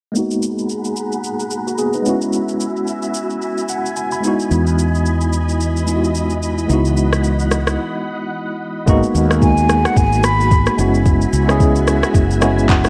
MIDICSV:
0, 0, Header, 1, 6, 480
1, 0, Start_track
1, 0, Key_signature, 5, "minor"
1, 0, Tempo, 545455
1, 129, Time_signature, 4, 2, 24, 8
1, 11348, End_track
2, 0, Start_track
2, 0, Title_t, "Flute"
2, 0, Program_c, 0, 73
2, 8294, Note_on_c, 0, 80, 85
2, 8673, Note_on_c, 0, 78, 85
2, 8686, Note_off_c, 0, 80, 0
2, 8777, Note_on_c, 0, 80, 97
2, 8790, Note_off_c, 0, 78, 0
2, 9015, Note_on_c, 0, 83, 98
2, 9028, Note_off_c, 0, 80, 0
2, 9492, Note_off_c, 0, 83, 0
2, 11348, End_track
3, 0, Start_track
3, 0, Title_t, "String machine"
3, 0, Program_c, 1, 50
3, 129, Note_on_c, 1, 68, 84
3, 129, Note_on_c, 1, 78, 75
3, 130, Note_on_c, 1, 82, 73
3, 130, Note_on_c, 1, 83, 88
3, 1793, Note_off_c, 1, 68, 0
3, 1793, Note_off_c, 1, 78, 0
3, 1793, Note_off_c, 1, 82, 0
3, 1793, Note_off_c, 1, 83, 0
3, 1810, Note_on_c, 1, 66, 79
3, 1810, Note_on_c, 1, 76, 75
3, 1810, Note_on_c, 1, 80, 75
3, 1810, Note_on_c, 1, 83, 93
3, 3710, Note_off_c, 1, 66, 0
3, 3711, Note_off_c, 1, 76, 0
3, 3731, Note_on_c, 1, 52, 81
3, 3731, Note_on_c, 1, 75, 73
3, 5854, Note_off_c, 1, 80, 0
3, 5890, Note_on_c, 1, 78, 73
3, 7775, Note_off_c, 1, 52, 0
3, 7775, Note_off_c, 1, 75, 0
3, 7775, Note_off_c, 1, 83, 0
3, 7791, Note_off_c, 1, 78, 0
3, 7810, Note_on_c, 1, 68, 75
3, 7811, Note_on_c, 1, 66, 86
3, 7811, Note_on_c, 1, 80, 77
3, 7812, Note_on_c, 1, 83, 90
3, 9473, Note_off_c, 1, 66, 0
3, 9473, Note_off_c, 1, 68, 0
3, 9490, Note_on_c, 1, 66, 86
3, 9490, Note_on_c, 1, 76, 73
3, 11348, Note_off_c, 1, 66, 0
3, 11348, Note_off_c, 1, 76, 0
3, 11348, Note_off_c, 1, 80, 0
3, 11348, Note_off_c, 1, 83, 0
3, 11348, End_track
4, 0, Start_track
4, 0, Title_t, "Tine electric piano"
4, 0, Program_c, 2, 4
4, 99, Note_on_c, 2, 56, 67
4, 115, Note_on_c, 2, 58, 60
4, 131, Note_on_c, 2, 59, 62
4, 146, Note_on_c, 2, 63, 64
4, 162, Note_on_c, 2, 66, 76
4, 292, Control_c, 2, 64, 127
4, 1063, Note_off_c, 2, 58, 0
4, 1071, Note_off_c, 2, 59, 0
4, 1079, Note_off_c, 2, 63, 0
4, 1087, Note_off_c, 2, 66, 0
4, 1471, Note_on_c, 2, 66, 61
4, 1476, Note_on_c, 2, 58, 51
4, 1565, Note_off_c, 2, 66, 0
4, 1568, Note_off_c, 2, 58, 0
4, 1572, Note_on_c, 2, 68, 69
4, 1578, Note_on_c, 2, 59, 57
4, 1703, Note_off_c, 2, 68, 0
4, 1706, Note_off_c, 2, 59, 0
4, 1712, Note_on_c, 2, 71, 61
4, 1717, Note_on_c, 2, 63, 51
4, 1760, Note_off_c, 2, 56, 0
4, 1781, Note_on_c, 2, 56, 72
4, 1797, Note_on_c, 2, 59, 66
4, 1812, Note_on_c, 2, 61, 67
4, 1821, Control_c, 2, 64, 0
4, 1828, Note_on_c, 2, 64, 69
4, 1844, Note_on_c, 2, 66, 80
4, 1938, Note_off_c, 2, 71, 0
4, 1941, Note_off_c, 2, 63, 0
4, 1977, Control_c, 2, 64, 127
4, 3251, Note_on_c, 2, 78, 68
4, 3474, Note_off_c, 2, 78, 0
4, 3490, Note_on_c, 2, 80, 73
4, 3619, Note_off_c, 2, 80, 0
4, 3630, Note_on_c, 2, 83, 71
4, 3680, Note_off_c, 2, 56, 0
4, 3688, Note_off_c, 2, 59, 0
4, 3696, Note_off_c, 2, 61, 0
4, 3700, Note_on_c, 2, 56, 72
4, 3704, Note_off_c, 2, 64, 0
4, 3711, Note_off_c, 2, 66, 0
4, 3716, Note_on_c, 2, 59, 66
4, 3732, Note_on_c, 2, 63, 64
4, 3742, Control_c, 2, 64, 0
4, 3748, Note_on_c, 2, 64, 64
4, 3763, Note_on_c, 2, 66, 83
4, 3897, Control_c, 2, 64, 127
4, 3946, Note_off_c, 2, 83, 0
4, 5126, Note_off_c, 2, 56, 0
4, 5134, Note_off_c, 2, 59, 0
4, 5142, Note_off_c, 2, 63, 0
4, 5150, Note_off_c, 2, 64, 0
4, 5155, Note_on_c, 2, 56, 55
4, 5158, Note_off_c, 2, 66, 0
4, 5163, Note_on_c, 2, 59, 52
4, 5170, Note_on_c, 2, 63, 48
4, 5179, Note_on_c, 2, 64, 52
4, 5187, Note_on_c, 2, 65, 49
4, 5243, Note_on_c, 2, 66, 60
4, 5245, Note_off_c, 2, 65, 0
4, 5850, Note_off_c, 2, 56, 0
4, 5861, Note_on_c, 2, 56, 72
4, 5866, Note_off_c, 2, 59, 0
4, 5877, Note_on_c, 2, 59, 68
4, 5882, Note_off_c, 2, 63, 0
4, 5892, Note_on_c, 2, 63, 66
4, 5894, Note_off_c, 2, 64, 0
4, 5903, Control_c, 2, 64, 0
4, 5907, Note_on_c, 2, 64, 64
4, 5913, Note_off_c, 2, 66, 0
4, 5923, Note_on_c, 2, 66, 78
4, 6055, Control_c, 2, 64, 127
4, 7760, Note_off_c, 2, 56, 0
4, 7768, Note_off_c, 2, 59, 0
4, 7776, Note_off_c, 2, 63, 0
4, 7783, Note_off_c, 2, 64, 0
4, 7791, Note_off_c, 2, 66, 0
4, 7797, Note_on_c, 2, 56, 110
4, 7805, Note_on_c, 2, 58, 98
4, 7812, Note_on_c, 2, 59, 101
4, 7820, Control_c, 2, 64, 0
4, 7820, Note_on_c, 2, 63, 97
4, 7827, Note_on_c, 2, 66, 122
4, 7978, Control_c, 2, 64, 127
4, 8099, Note_off_c, 2, 56, 0
4, 8103, Note_off_c, 2, 58, 0
4, 8107, Note_off_c, 2, 59, 0
4, 8111, Note_off_c, 2, 63, 0
4, 8114, Note_off_c, 2, 66, 0
4, 8175, Note_on_c, 2, 56, 72
4, 8183, Note_on_c, 2, 58, 66
4, 8191, Note_on_c, 2, 59, 63
4, 8198, Note_on_c, 2, 63, 64
4, 8206, Note_on_c, 2, 66, 79
4, 8942, Note_off_c, 2, 56, 0
4, 8946, Note_off_c, 2, 58, 0
4, 8950, Note_off_c, 2, 59, 0
4, 8954, Note_off_c, 2, 63, 0
4, 8958, Note_off_c, 2, 66, 0
4, 9477, Note_on_c, 2, 56, 75
4, 9485, Note_on_c, 2, 59, 75
4, 9493, Note_on_c, 2, 61, 72
4, 9501, Note_on_c, 2, 64, 70
4, 9502, Control_c, 2, 64, 0
4, 9508, Note_on_c, 2, 66, 85
4, 9662, Control_c, 2, 64, 127
4, 9963, Note_off_c, 2, 56, 0
4, 9967, Note_off_c, 2, 59, 0
4, 9971, Note_off_c, 2, 61, 0
4, 9975, Note_off_c, 2, 64, 0
4, 9979, Note_off_c, 2, 66, 0
4, 10097, Note_on_c, 2, 56, 87
4, 10105, Note_on_c, 2, 59, 78
4, 10112, Note_on_c, 2, 61, 80
4, 10120, Note_on_c, 2, 64, 80
4, 10128, Note_on_c, 2, 68, 95
4, 10767, Note_off_c, 2, 56, 0
4, 10771, Note_off_c, 2, 59, 0
4, 10775, Note_off_c, 2, 61, 0
4, 10778, Note_off_c, 2, 64, 0
4, 10783, Note_off_c, 2, 68, 0
4, 10916, Note_on_c, 2, 56, 90
4, 10923, Note_on_c, 2, 59, 81
4, 10930, Note_on_c, 2, 80, 73
4, 10931, Note_on_c, 2, 61, 76
4, 10938, Note_on_c, 2, 64, 80
4, 10946, Note_on_c, 2, 66, 92
4, 11153, Note_off_c, 2, 80, 0
4, 11173, Note_on_c, 2, 78, 76
4, 11322, Note_off_c, 2, 56, 0
4, 11326, Note_off_c, 2, 59, 0
4, 11330, Note_off_c, 2, 61, 0
4, 11333, Note_off_c, 2, 64, 0
4, 11337, Note_off_c, 2, 66, 0
4, 11348, Note_off_c, 2, 78, 0
4, 11348, End_track
5, 0, Start_track
5, 0, Title_t, "Fretless electric bass"
5, 0, Program_c, 3, 35
5, 3970, Note_on_c, 3, 40, 80
5, 5855, Note_off_c, 3, 40, 0
5, 5891, Note_on_c, 3, 37, 82
5, 6831, Note_off_c, 3, 37, 0
5, 7810, Note_on_c, 3, 32, 97
5, 7928, Note_off_c, 3, 32, 0
5, 8050, Note_on_c, 3, 39, 93
5, 8661, Note_off_c, 3, 39, 0
5, 8767, Note_on_c, 3, 32, 91
5, 9379, Note_off_c, 3, 32, 0
5, 9490, Note_on_c, 3, 30, 98
5, 9897, Note_off_c, 3, 30, 0
5, 9970, Note_on_c, 3, 37, 89
5, 10581, Note_off_c, 3, 37, 0
5, 10687, Note_on_c, 3, 30, 95
5, 11299, Note_off_c, 3, 30, 0
5, 11348, End_track
6, 0, Start_track
6, 0, Title_t, "Drums"
6, 130, Note_on_c, 9, 82, 68
6, 218, Note_off_c, 9, 82, 0
6, 268, Note_on_c, 9, 82, 52
6, 356, Note_off_c, 9, 82, 0
6, 370, Note_on_c, 9, 82, 90
6, 458, Note_off_c, 9, 82, 0
6, 513, Note_on_c, 9, 82, 42
6, 601, Note_off_c, 9, 82, 0
6, 609, Note_on_c, 9, 82, 56
6, 697, Note_off_c, 9, 82, 0
6, 745, Note_on_c, 9, 82, 48
6, 833, Note_off_c, 9, 82, 0
6, 848, Note_on_c, 9, 82, 86
6, 936, Note_off_c, 9, 82, 0
6, 989, Note_on_c, 9, 82, 53
6, 1077, Note_off_c, 9, 82, 0
6, 1090, Note_on_c, 9, 82, 69
6, 1178, Note_off_c, 9, 82, 0
6, 1231, Note_on_c, 9, 82, 53
6, 1319, Note_off_c, 9, 82, 0
6, 1325, Note_on_c, 9, 82, 97
6, 1413, Note_off_c, 9, 82, 0
6, 1476, Note_on_c, 9, 82, 52
6, 1564, Note_off_c, 9, 82, 0
6, 1569, Note_on_c, 9, 82, 63
6, 1657, Note_off_c, 9, 82, 0
6, 1701, Note_on_c, 9, 82, 49
6, 1789, Note_off_c, 9, 82, 0
6, 1811, Note_on_c, 9, 82, 74
6, 1899, Note_off_c, 9, 82, 0
6, 1951, Note_on_c, 9, 82, 48
6, 2039, Note_off_c, 9, 82, 0
6, 2050, Note_on_c, 9, 82, 67
6, 2138, Note_off_c, 9, 82, 0
6, 2188, Note_on_c, 9, 82, 50
6, 2276, Note_off_c, 9, 82, 0
6, 2291, Note_on_c, 9, 82, 94
6, 2379, Note_off_c, 9, 82, 0
6, 2434, Note_on_c, 9, 82, 43
6, 2522, Note_off_c, 9, 82, 0
6, 2529, Note_on_c, 9, 82, 57
6, 2617, Note_off_c, 9, 82, 0
6, 2664, Note_on_c, 9, 82, 49
6, 2752, Note_off_c, 9, 82, 0
6, 2767, Note_on_c, 9, 82, 89
6, 2855, Note_off_c, 9, 82, 0
6, 2908, Note_on_c, 9, 82, 49
6, 2996, Note_off_c, 9, 82, 0
6, 3009, Note_on_c, 9, 82, 68
6, 3097, Note_off_c, 9, 82, 0
6, 3150, Note_on_c, 9, 82, 54
6, 3238, Note_off_c, 9, 82, 0
6, 3244, Note_on_c, 9, 82, 94
6, 3332, Note_off_c, 9, 82, 0
6, 3396, Note_on_c, 9, 82, 52
6, 3484, Note_off_c, 9, 82, 0
6, 3489, Note_on_c, 9, 82, 65
6, 3577, Note_off_c, 9, 82, 0
6, 3622, Note_on_c, 9, 82, 49
6, 3710, Note_off_c, 9, 82, 0
6, 3732, Note_on_c, 9, 82, 78
6, 3820, Note_off_c, 9, 82, 0
6, 3871, Note_on_c, 9, 82, 50
6, 3959, Note_off_c, 9, 82, 0
6, 3971, Note_on_c, 9, 82, 67
6, 4059, Note_off_c, 9, 82, 0
6, 4109, Note_on_c, 9, 82, 51
6, 4197, Note_off_c, 9, 82, 0
6, 4212, Note_on_c, 9, 82, 97
6, 4300, Note_off_c, 9, 82, 0
6, 4355, Note_on_c, 9, 82, 43
6, 4443, Note_off_c, 9, 82, 0
6, 4451, Note_on_c, 9, 82, 59
6, 4539, Note_off_c, 9, 82, 0
6, 4586, Note_on_c, 9, 82, 51
6, 4674, Note_off_c, 9, 82, 0
6, 4689, Note_on_c, 9, 82, 91
6, 4777, Note_off_c, 9, 82, 0
6, 4831, Note_on_c, 9, 82, 50
6, 4919, Note_off_c, 9, 82, 0
6, 4933, Note_on_c, 9, 82, 69
6, 5021, Note_off_c, 9, 82, 0
6, 5073, Note_on_c, 9, 82, 56
6, 5161, Note_off_c, 9, 82, 0
6, 5166, Note_on_c, 9, 82, 98
6, 5254, Note_off_c, 9, 82, 0
6, 5317, Note_on_c, 9, 82, 53
6, 5405, Note_off_c, 9, 82, 0
6, 5411, Note_on_c, 9, 82, 66
6, 5499, Note_off_c, 9, 82, 0
6, 5543, Note_on_c, 9, 82, 50
6, 5631, Note_off_c, 9, 82, 0
6, 5654, Note_on_c, 9, 82, 76
6, 5742, Note_off_c, 9, 82, 0
6, 5792, Note_on_c, 9, 82, 53
6, 5880, Note_off_c, 9, 82, 0
6, 5892, Note_on_c, 9, 82, 72
6, 5980, Note_off_c, 9, 82, 0
6, 6029, Note_on_c, 9, 82, 51
6, 6117, Note_off_c, 9, 82, 0
6, 6132, Note_on_c, 9, 82, 91
6, 6220, Note_off_c, 9, 82, 0
6, 6271, Note_on_c, 9, 37, 86
6, 6275, Note_on_c, 9, 82, 45
6, 6359, Note_off_c, 9, 37, 0
6, 6363, Note_off_c, 9, 82, 0
6, 6371, Note_on_c, 9, 82, 60
6, 6459, Note_off_c, 9, 82, 0
6, 6506, Note_on_c, 9, 82, 48
6, 6594, Note_off_c, 9, 82, 0
6, 6609, Note_on_c, 9, 82, 89
6, 6611, Note_on_c, 9, 37, 85
6, 6697, Note_off_c, 9, 82, 0
6, 6699, Note_off_c, 9, 37, 0
6, 6749, Note_on_c, 9, 37, 91
6, 6750, Note_on_c, 9, 82, 51
6, 6837, Note_off_c, 9, 37, 0
6, 6838, Note_off_c, 9, 82, 0
6, 7811, Note_on_c, 9, 36, 112
6, 7811, Note_on_c, 9, 82, 69
6, 7899, Note_off_c, 9, 36, 0
6, 7899, Note_off_c, 9, 82, 0
6, 7949, Note_on_c, 9, 82, 51
6, 8037, Note_off_c, 9, 82, 0
6, 8053, Note_on_c, 9, 82, 97
6, 8141, Note_off_c, 9, 82, 0
6, 8190, Note_on_c, 9, 37, 89
6, 8194, Note_on_c, 9, 82, 43
6, 8278, Note_off_c, 9, 37, 0
6, 8282, Note_off_c, 9, 82, 0
6, 8288, Note_on_c, 9, 36, 98
6, 8290, Note_on_c, 9, 82, 60
6, 8376, Note_off_c, 9, 36, 0
6, 8378, Note_off_c, 9, 82, 0
6, 8425, Note_on_c, 9, 82, 52
6, 8513, Note_off_c, 9, 82, 0
6, 8529, Note_on_c, 9, 82, 88
6, 8530, Note_on_c, 9, 37, 92
6, 8617, Note_off_c, 9, 82, 0
6, 8618, Note_off_c, 9, 37, 0
6, 8669, Note_on_c, 9, 37, 94
6, 8670, Note_on_c, 9, 82, 52
6, 8757, Note_off_c, 9, 37, 0
6, 8758, Note_off_c, 9, 82, 0
6, 8768, Note_on_c, 9, 36, 98
6, 8771, Note_on_c, 9, 82, 73
6, 8856, Note_off_c, 9, 36, 0
6, 8859, Note_off_c, 9, 82, 0
6, 8911, Note_on_c, 9, 82, 54
6, 8999, Note_off_c, 9, 82, 0
6, 9006, Note_on_c, 9, 82, 93
6, 9009, Note_on_c, 9, 37, 97
6, 9094, Note_off_c, 9, 82, 0
6, 9097, Note_off_c, 9, 37, 0
6, 9157, Note_on_c, 9, 82, 53
6, 9245, Note_off_c, 9, 82, 0
6, 9250, Note_on_c, 9, 36, 100
6, 9250, Note_on_c, 9, 82, 67
6, 9338, Note_off_c, 9, 36, 0
6, 9338, Note_off_c, 9, 82, 0
6, 9382, Note_on_c, 9, 82, 49
6, 9386, Note_on_c, 9, 37, 83
6, 9470, Note_off_c, 9, 82, 0
6, 9474, Note_off_c, 9, 37, 0
6, 9492, Note_on_c, 9, 82, 79
6, 9580, Note_off_c, 9, 82, 0
6, 9631, Note_on_c, 9, 82, 52
6, 9719, Note_off_c, 9, 82, 0
6, 9730, Note_on_c, 9, 36, 115
6, 9731, Note_on_c, 9, 82, 69
6, 9818, Note_off_c, 9, 36, 0
6, 9819, Note_off_c, 9, 82, 0
6, 9868, Note_on_c, 9, 82, 52
6, 9956, Note_off_c, 9, 82, 0
6, 9971, Note_on_c, 9, 82, 101
6, 10059, Note_off_c, 9, 82, 0
6, 10110, Note_on_c, 9, 37, 87
6, 10114, Note_on_c, 9, 82, 45
6, 10198, Note_off_c, 9, 37, 0
6, 10202, Note_off_c, 9, 82, 0
6, 10208, Note_on_c, 9, 36, 101
6, 10209, Note_on_c, 9, 82, 60
6, 10296, Note_off_c, 9, 36, 0
6, 10297, Note_off_c, 9, 82, 0
6, 10344, Note_on_c, 9, 82, 51
6, 10432, Note_off_c, 9, 82, 0
6, 10449, Note_on_c, 9, 82, 94
6, 10450, Note_on_c, 9, 37, 91
6, 10537, Note_off_c, 9, 82, 0
6, 10538, Note_off_c, 9, 37, 0
6, 10588, Note_on_c, 9, 37, 93
6, 10589, Note_on_c, 9, 82, 52
6, 10676, Note_off_c, 9, 37, 0
6, 10677, Note_off_c, 9, 82, 0
6, 10687, Note_on_c, 9, 36, 103
6, 10691, Note_on_c, 9, 82, 74
6, 10775, Note_off_c, 9, 36, 0
6, 10779, Note_off_c, 9, 82, 0
6, 10832, Note_on_c, 9, 82, 54
6, 10920, Note_off_c, 9, 82, 0
6, 10925, Note_on_c, 9, 82, 98
6, 10928, Note_on_c, 9, 37, 98
6, 11013, Note_off_c, 9, 82, 0
6, 11016, Note_off_c, 9, 37, 0
6, 11076, Note_on_c, 9, 82, 53
6, 11164, Note_off_c, 9, 82, 0
6, 11169, Note_on_c, 9, 82, 69
6, 11170, Note_on_c, 9, 36, 101
6, 11172, Note_on_c, 9, 39, 91
6, 11257, Note_off_c, 9, 82, 0
6, 11258, Note_off_c, 9, 36, 0
6, 11260, Note_off_c, 9, 39, 0
6, 11302, Note_on_c, 9, 82, 49
6, 11306, Note_on_c, 9, 37, 85
6, 11348, Note_off_c, 9, 37, 0
6, 11348, Note_off_c, 9, 82, 0
6, 11348, End_track
0, 0, End_of_file